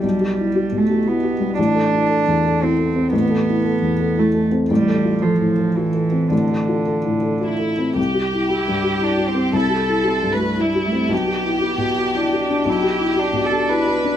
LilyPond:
<<
  \new Staff \with { instrumentName = "Violin section" } { \time 3/4 \key c \major \tempo 4 = 115 r2. | r2. | r2. | r2. |
r2 e'4 | g'2. | a'4. b'8 e'4 | g'2. |
g'4. a'8 b'4 | }
  \new Staff \with { instrumentName = "Felt piano" } { \time 3/4 \key c \major \tuplet 3/2 { <b,, g>8 g'8 e'8 g'8 b,8 g'8 e'8 g'8 g8 } | \tuplet 3/2 { a,,8 a'8 e'8 a'8 e,8 a'8 e'8 a'8 c'8 } | \tuplet 3/2 { a,,8 a'8 e'8 a'8 e,8 a'8 e'8 a'8 c'8 } | \tuplet 3/2 { a,,8 a'8 f'8 a'8 a,8 a'8 f'8 a'8 c'8 } |
\tuplet 3/2 { a,,8 a'8 f'8 a'8 a,8 a'8 f'8 a'8 c'8 } | \tuplet 3/2 { c,8 g'8 e'8 g'8 g,8 g'8 e'8 g'8 c'8 } | \tuplet 3/2 { c,8 g'8 e'8 g'8 g,8 g'8 e'8 g'8 c'8 } | \tuplet 3/2 { b,,8 g'8 e'8 g'8 b,8 g'8 e'8 g'8 d'8 } |
\tuplet 3/2 { b,,8 g'8 e'8 g'8 b,8 g'8 e'8 g'8 d'8 } | }
  \new Staff \with { instrumentName = "Cello" } { \time 3/4 \key c \major g4. a8 b4 | d'2 c'4 | b2 a8 r8 | g4 f4 e4 |
d2 r4 | r4 e'4 d'8 c'8 | e'4 c'8 a8 g8 a8 | b4 b4 d'4 |
e'4 d'2 | }
>>